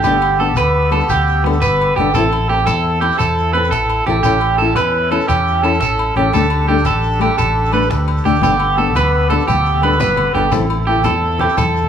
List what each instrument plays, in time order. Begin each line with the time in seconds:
0.03 fingered electric bass G1, nylon-string guitar G3 B3 D4, accordion B3 G4 A4, clean electric guitar G4, cajon bass, low agogo, shekere
0.08 nylon-string guitar A4
0.22 low agogo
0.39 nylon-string guitar G3 B3 D4 A4, clean electric guitar A4
0.56 fingered electric bass D2, clean electric guitar B4, cajon slap, low agogo, shekere
0.91 nylon-string guitar G3 B3 D4 A4, clean electric guitar A4, low agogo
1.00 shekere
1.09 fingered electric bass D2, clean electric guitar G4, cajon bass, low agogo, shekere
1.28 cajon slap, shekere
1.44 nylon-string guitar G3 B3 D4 A4, muted clean electric guitar stroke, low agogo
1.53 shekere
1.62 fingered electric bass G1, clean electric guitar B4, cajon slap, shekere
1.81 low agogo
1.96 fingered electric bass G1, nylon-string guitar G3 B3 D4, clean electric guitar G4, cajon bass
2.00 nylon-string guitar A4
2.14 fingered electric bass A1, accordion C4 E4 A4, nylon-string guitar C4 E4 A4, clean electric guitar A4, cajon bass, low agogo, shekere
2.32 cajon slap, low agogo
2.49 nylon-string guitar C4 E4 A4, clean electric guitar G4, cajon slap
2.66 fingered electric bass E2, clean electric guitar A4, cajon slap, low agogo, shekere
3.01 nylon-string guitar C4 E4, clean electric guitar G4, low agogo
3.12 shekere
3.19 fingered electric bass E2, clean electric guitar A4, cajon bass, low agogo, shekere
3.38 cajon slap, shekere
3.53 nylon-string guitar C4 A4, clean electric guitar B4, muted nylon-string guitar stroke, low agogo
3.64 shekere
3.71 fingered electric bass A1, clean electric guitar A4, cajon slap, shekere
3.90 cajon slap, low agogo
4.07 fingered electric bass A1, nylon-string guitar C4 E4 A4, clean electric guitar G4, cajon bass
4.23 fingered electric bass A1, nylon-string guitar C#4 E4 A4, accordion C#4, clean electric guitar G4, cajon bass, low agogo, shekere
4.41 low agogo
4.58 nylon-string guitar C#4 E4, clean electric guitar A4
4.63 nylon-string guitar A4
4.75 fingered electric bass E2, clean electric guitar B4, cajon slap, low agogo, shekere
4.95 cajon slap
5.11 nylon-string guitar C#4 E4 A4, clean electric guitar A4, low agogo
5.21 shekere
5.28 fingered electric bass E2, clean electric guitar G4, cajon bass, low agogo, shekere
5.47 shekere
5.63 nylon-string guitar C#4 E4 A4, clean electric guitar A4, low agogo
5.74 shekere
5.80 fingered electric bass A1, clean electric guitar A4, cajon slap, shekere
5.99 low agogo
6.16 fingered electric bass A1, nylon-string guitar C#4 E4 A4, clean electric guitar G4, cajon bass
6.32 fingered electric bass D2, nylon-string guitar G3 A3 D4 A4, accordion D4 G4, clean electric guitar A4, cajon bass, low agogo, shekere
6.50 low agogo
6.68 nylon-string guitar G3 A3 D4 A4, clean electric guitar G4
6.78 shekere
6.85 fingered electric bass A1, clean electric guitar A4, cajon slap, low agogo, shekere
7.03 shekere
7.12 shekere
7.19 nylon-string guitar G3 A3 D4 A4, clean electric guitar G4, low agogo, shekere
7.38 fingered electric bass A1, clean electric guitar A4, cajon bass, low agogo, shekere
7.65 shekere
7.71 nylon-string guitar G3 A3 D4 A4, clean electric guitar B4, low agogo, shekere
7.82 shekere
7.90 fingered electric bass D2, muted clean electric guitar stroke, cajon slap, shekere
8.08 low agogo
8.17 shekere
8.25 fingered electric bass D2, nylon-string guitar A3 D4 A4, clean electric guitar G4, cajon bass, shekere
8.35 shekere
8.41 fingered electric bass G1, nylon-string guitar G3 B3 D4 A4, accordion B3 G4, clean electric guitar G4, cajon bass, high conga, low conga, low agogo, shekere
8.60 cajon slap, low agogo
8.76 nylon-string guitar G3 B3 D4 A4, clean electric guitar A4, cajon slap, low conga
8.87 high conga
8.95 fingered electric bass D2, clean electric guitar B4, cajon slap, low conga, low agogo, shekere
9.14 cajon slap
9.30 nylon-string guitar G3 B3 D4 A4, clean electric guitar A4, high conga, low conga, low agogo
9.39 low conga, shekere
9.48 fingered electric bass D2, clean electric guitar G4, cajon bass, low conga, low agogo, shekere
9.57 low conga
9.66 cajon slap, shekere
9.74 high conga
9.82 nylon-string guitar G3 D4 A4, clean electric guitar B4, muted nylon-string guitar stroke, low agogo
9.92 shekere
9.99 fingered electric bass G1, clean electric guitar B4, cajon slap, low conga, shekere
10.16 high conga, low agogo
10.26 low conga
10.34 fingered electric bass G1, nylon-string guitar G3 B3 D4 A4, clean electric guitar G4, cajon bass
10.52 fingered electric bass A1, nylon-string guitar E3 C4 E4 A4, accordion C4 E4, muted clean electric guitar stroke, cajon bass, high conga, low conga, low agogo, shekere
10.61 low conga
10.70 low agogo
10.87 nylon-string guitar E3 E4 A4, clean electric guitar G4, cajon slap, low conga
10.95 high conga
11.04 fingered electric bass E2, clean electric guitar A4, cajon slap, low conga, low agogo, shekere
11.38 nylon-string guitar E3 C4 E4 A4, clean electric guitar G4, high conga, low conga, low agogo
11.48 low conga, shekere
11.57 fingered electric bass E2, clean electric guitar A4, cajon bass, low conga, low agogo, shekere
11.76 cajon slap, shekere
11.83 high conga